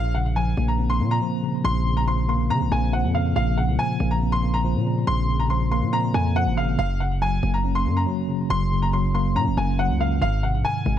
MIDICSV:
0, 0, Header, 1, 4, 480
1, 0, Start_track
1, 0, Key_signature, -5, "minor"
1, 0, Tempo, 428571
1, 1842, Time_signature, 4, 2, 24, 8
1, 12307, End_track
2, 0, Start_track
2, 0, Title_t, "Upright piano"
2, 0, Program_c, 0, 0
2, 0, Note_on_c, 0, 77, 102
2, 150, Note_off_c, 0, 77, 0
2, 162, Note_on_c, 0, 78, 74
2, 390, Note_off_c, 0, 78, 0
2, 403, Note_on_c, 0, 80, 88
2, 741, Note_off_c, 0, 80, 0
2, 763, Note_on_c, 0, 82, 74
2, 990, Note_off_c, 0, 82, 0
2, 1003, Note_on_c, 0, 84, 85
2, 1230, Note_off_c, 0, 84, 0
2, 1244, Note_on_c, 0, 82, 87
2, 1807, Note_off_c, 0, 82, 0
2, 1844, Note_on_c, 0, 84, 104
2, 2181, Note_off_c, 0, 84, 0
2, 2204, Note_on_c, 0, 82, 80
2, 2317, Note_off_c, 0, 82, 0
2, 2325, Note_on_c, 0, 84, 77
2, 2546, Note_off_c, 0, 84, 0
2, 2563, Note_on_c, 0, 84, 71
2, 2790, Note_off_c, 0, 84, 0
2, 2804, Note_on_c, 0, 82, 96
2, 3031, Note_off_c, 0, 82, 0
2, 3044, Note_on_c, 0, 80, 83
2, 3271, Note_off_c, 0, 80, 0
2, 3284, Note_on_c, 0, 78, 74
2, 3511, Note_off_c, 0, 78, 0
2, 3523, Note_on_c, 0, 77, 75
2, 3746, Note_off_c, 0, 77, 0
2, 3763, Note_on_c, 0, 77, 86
2, 3990, Note_off_c, 0, 77, 0
2, 4004, Note_on_c, 0, 78, 70
2, 4231, Note_off_c, 0, 78, 0
2, 4243, Note_on_c, 0, 80, 94
2, 4581, Note_off_c, 0, 80, 0
2, 4601, Note_on_c, 0, 82, 77
2, 4829, Note_off_c, 0, 82, 0
2, 4841, Note_on_c, 0, 84, 92
2, 5069, Note_off_c, 0, 84, 0
2, 5081, Note_on_c, 0, 82, 82
2, 5646, Note_off_c, 0, 82, 0
2, 5681, Note_on_c, 0, 84, 107
2, 6020, Note_off_c, 0, 84, 0
2, 6041, Note_on_c, 0, 82, 80
2, 6156, Note_off_c, 0, 82, 0
2, 6159, Note_on_c, 0, 84, 78
2, 6384, Note_off_c, 0, 84, 0
2, 6401, Note_on_c, 0, 84, 79
2, 6629, Note_off_c, 0, 84, 0
2, 6640, Note_on_c, 0, 82, 100
2, 6869, Note_off_c, 0, 82, 0
2, 6882, Note_on_c, 0, 80, 85
2, 7109, Note_off_c, 0, 80, 0
2, 7123, Note_on_c, 0, 78, 91
2, 7350, Note_off_c, 0, 78, 0
2, 7362, Note_on_c, 0, 77, 81
2, 7584, Note_off_c, 0, 77, 0
2, 7601, Note_on_c, 0, 77, 94
2, 7829, Note_off_c, 0, 77, 0
2, 7843, Note_on_c, 0, 78, 71
2, 8070, Note_off_c, 0, 78, 0
2, 8084, Note_on_c, 0, 80, 94
2, 8422, Note_off_c, 0, 80, 0
2, 8442, Note_on_c, 0, 82, 76
2, 8670, Note_off_c, 0, 82, 0
2, 8682, Note_on_c, 0, 84, 85
2, 8910, Note_off_c, 0, 84, 0
2, 8922, Note_on_c, 0, 82, 74
2, 9486, Note_off_c, 0, 82, 0
2, 9522, Note_on_c, 0, 84, 105
2, 9861, Note_off_c, 0, 84, 0
2, 9881, Note_on_c, 0, 82, 79
2, 9996, Note_off_c, 0, 82, 0
2, 10004, Note_on_c, 0, 84, 77
2, 10226, Note_off_c, 0, 84, 0
2, 10243, Note_on_c, 0, 84, 78
2, 10470, Note_off_c, 0, 84, 0
2, 10482, Note_on_c, 0, 82, 93
2, 10710, Note_off_c, 0, 82, 0
2, 10724, Note_on_c, 0, 80, 79
2, 10951, Note_off_c, 0, 80, 0
2, 10965, Note_on_c, 0, 78, 83
2, 11191, Note_off_c, 0, 78, 0
2, 11205, Note_on_c, 0, 77, 76
2, 11428, Note_off_c, 0, 77, 0
2, 11445, Note_on_c, 0, 77, 92
2, 11671, Note_off_c, 0, 77, 0
2, 11684, Note_on_c, 0, 78, 68
2, 11911, Note_off_c, 0, 78, 0
2, 11923, Note_on_c, 0, 80, 91
2, 12261, Note_off_c, 0, 80, 0
2, 12307, End_track
3, 0, Start_track
3, 0, Title_t, "Tine electric piano"
3, 0, Program_c, 1, 4
3, 0, Note_on_c, 1, 46, 90
3, 124, Control_c, 1, 64, 127
3, 158, Note_on_c, 1, 49, 76
3, 406, Note_on_c, 1, 53, 86
3, 640, Note_on_c, 1, 58, 99
3, 883, Note_on_c, 1, 60, 84
3, 1112, Note_off_c, 1, 58, 0
3, 1125, Note_on_c, 1, 58, 81
3, 1126, Note_off_c, 1, 46, 0
3, 1348, Note_off_c, 1, 53, 0
3, 1360, Note_off_c, 1, 49, 0
3, 1361, Note_on_c, 1, 53, 102
3, 1598, Note_on_c, 1, 49, 80
3, 1835, Note_on_c, 1, 46, 93
3, 2067, Note_off_c, 1, 49, 0
3, 2080, Note_on_c, 1, 49, 76
3, 2083, Note_off_c, 1, 60, 0
3, 2306, Note_off_c, 1, 53, 0
3, 2320, Note_on_c, 1, 53, 81
3, 2324, Note_off_c, 1, 58, 0
3, 2557, Note_on_c, 1, 58, 95
3, 2801, Note_on_c, 1, 60, 80
3, 3030, Note_off_c, 1, 58, 0
3, 3038, Note_off_c, 1, 46, 0
3, 3044, Note_on_c, 1, 58, 83
3, 3272, Note_off_c, 1, 53, 0
3, 3281, Note_off_c, 1, 49, 0
3, 3285, Note_on_c, 1, 53, 98
3, 3520, Note_on_c, 1, 49, 82
3, 3763, Note_on_c, 1, 46, 89
3, 3991, Note_off_c, 1, 49, 0
3, 4002, Note_off_c, 1, 60, 0
3, 4004, Note_on_c, 1, 49, 75
3, 4227, Note_off_c, 1, 53, 0
3, 4240, Note_on_c, 1, 53, 79
3, 4243, Note_off_c, 1, 58, 0
3, 4491, Note_on_c, 1, 58, 97
3, 4715, Note_on_c, 1, 60, 84
3, 4951, Note_off_c, 1, 58, 0
3, 4962, Note_off_c, 1, 46, 0
3, 4965, Note_on_c, 1, 58, 77
3, 5183, Note_off_c, 1, 53, 0
3, 5196, Note_on_c, 1, 53, 98
3, 5203, Note_off_c, 1, 49, 0
3, 5441, Note_on_c, 1, 49, 81
3, 5686, Note_on_c, 1, 46, 94
3, 5911, Note_off_c, 1, 49, 0
3, 5918, Note_off_c, 1, 60, 0
3, 5925, Note_on_c, 1, 49, 81
3, 6155, Note_off_c, 1, 53, 0
3, 6163, Note_off_c, 1, 58, 0
3, 6169, Note_on_c, 1, 53, 84
3, 6400, Note_on_c, 1, 58, 103
3, 6641, Note_on_c, 1, 60, 88
3, 6864, Note_off_c, 1, 58, 0
3, 6877, Note_on_c, 1, 58, 77
3, 6884, Note_off_c, 1, 46, 0
3, 7106, Note_off_c, 1, 53, 0
3, 7119, Note_on_c, 1, 53, 99
3, 7124, Note_off_c, 1, 49, 0
3, 7358, Note_on_c, 1, 49, 91
3, 7600, Note_off_c, 1, 49, 0
3, 7600, Note_off_c, 1, 58, 0
3, 7601, Note_off_c, 1, 53, 0
3, 7601, Note_off_c, 1, 60, 0
3, 7604, Note_on_c, 1, 42, 86
3, 7618, Control_c, 1, 64, 0
3, 7824, Control_c, 1, 64, 127
3, 7839, Note_on_c, 1, 49, 79
3, 8079, Note_on_c, 1, 54, 88
3, 8320, Note_on_c, 1, 58, 94
3, 8562, Note_on_c, 1, 61, 85
3, 8779, Note_off_c, 1, 58, 0
3, 8793, Note_on_c, 1, 58, 78
3, 8803, Note_off_c, 1, 42, 0
3, 9020, Note_off_c, 1, 54, 0
3, 9033, Note_on_c, 1, 54, 99
3, 9040, Note_off_c, 1, 49, 0
3, 9275, Note_on_c, 1, 49, 82
3, 9512, Note_on_c, 1, 42, 96
3, 9749, Note_off_c, 1, 49, 0
3, 9762, Note_off_c, 1, 61, 0
3, 9763, Note_on_c, 1, 49, 74
3, 9990, Note_off_c, 1, 54, 0
3, 9997, Note_off_c, 1, 58, 0
3, 10003, Note_on_c, 1, 54, 81
3, 10241, Note_on_c, 1, 58, 98
3, 10477, Note_on_c, 1, 61, 92
3, 10712, Note_off_c, 1, 58, 0
3, 10717, Note_off_c, 1, 42, 0
3, 10726, Note_on_c, 1, 58, 78
3, 10950, Note_off_c, 1, 54, 0
3, 10962, Note_off_c, 1, 49, 0
3, 10963, Note_on_c, 1, 54, 89
3, 11205, Note_on_c, 1, 49, 77
3, 11440, Note_off_c, 1, 61, 0
3, 11443, Note_off_c, 1, 49, 0
3, 11443, Note_off_c, 1, 54, 0
3, 11444, Note_off_c, 1, 58, 0
3, 11450, Note_on_c, 1, 44, 93
3, 11456, Control_c, 1, 64, 0
3, 11650, Control_c, 1, 64, 127
3, 11687, Note_on_c, 1, 48, 75
3, 11922, Note_on_c, 1, 51, 79
3, 12166, Note_on_c, 1, 56, 91
3, 12307, Note_off_c, 1, 44, 0
3, 12307, Note_off_c, 1, 48, 0
3, 12307, Note_off_c, 1, 51, 0
3, 12307, Note_off_c, 1, 56, 0
3, 12307, End_track
4, 0, Start_track
4, 0, Title_t, "808-style bass"
4, 0, Program_c, 2, 38
4, 0, Note_on_c, 2, 34, 112
4, 613, Note_off_c, 2, 34, 0
4, 643, Note_on_c, 2, 34, 100
4, 1124, Note_on_c, 2, 46, 99
4, 1140, Note_off_c, 2, 34, 0
4, 1351, Note_off_c, 2, 46, 0
4, 1842, Note_on_c, 2, 34, 110
4, 2802, Note_on_c, 2, 49, 98
4, 2819, Note_off_c, 2, 34, 0
4, 2923, Note_on_c, 2, 34, 98
4, 2940, Note_off_c, 2, 49, 0
4, 3037, Note_off_c, 2, 34, 0
4, 3043, Note_on_c, 2, 34, 109
4, 3403, Note_on_c, 2, 41, 98
4, 3420, Note_off_c, 2, 34, 0
4, 3744, Note_off_c, 2, 41, 0
4, 3762, Note_on_c, 2, 34, 106
4, 4121, Note_on_c, 2, 36, 106
4, 4138, Note_off_c, 2, 34, 0
4, 4236, Note_off_c, 2, 36, 0
4, 4481, Note_on_c, 2, 34, 98
4, 5321, Note_on_c, 2, 46, 100
4, 5337, Note_off_c, 2, 34, 0
4, 5663, Note_off_c, 2, 46, 0
4, 5682, Note_on_c, 2, 34, 109
4, 6521, Note_on_c, 2, 46, 98
4, 6538, Note_off_c, 2, 34, 0
4, 6863, Note_off_c, 2, 46, 0
4, 6881, Note_on_c, 2, 41, 102
4, 7241, Note_on_c, 2, 32, 100
4, 7257, Note_off_c, 2, 41, 0
4, 7583, Note_off_c, 2, 32, 0
4, 7601, Note_on_c, 2, 30, 110
4, 8293, Note_off_c, 2, 30, 0
4, 8321, Note_on_c, 2, 30, 104
4, 8801, Note_on_c, 2, 42, 100
4, 8818, Note_off_c, 2, 30, 0
4, 9030, Note_off_c, 2, 42, 0
4, 9522, Note_on_c, 2, 30, 109
4, 10482, Note_on_c, 2, 46, 101
4, 10499, Note_off_c, 2, 30, 0
4, 10603, Note_on_c, 2, 30, 103
4, 10620, Note_off_c, 2, 46, 0
4, 10717, Note_off_c, 2, 30, 0
4, 10722, Note_on_c, 2, 30, 105
4, 11082, Note_on_c, 2, 37, 100
4, 11099, Note_off_c, 2, 30, 0
4, 11424, Note_off_c, 2, 37, 0
4, 11441, Note_on_c, 2, 32, 110
4, 11802, Note_on_c, 2, 34, 106
4, 11819, Note_off_c, 2, 32, 0
4, 11916, Note_off_c, 2, 34, 0
4, 12163, Note_on_c, 2, 32, 100
4, 12307, Note_off_c, 2, 32, 0
4, 12307, End_track
0, 0, End_of_file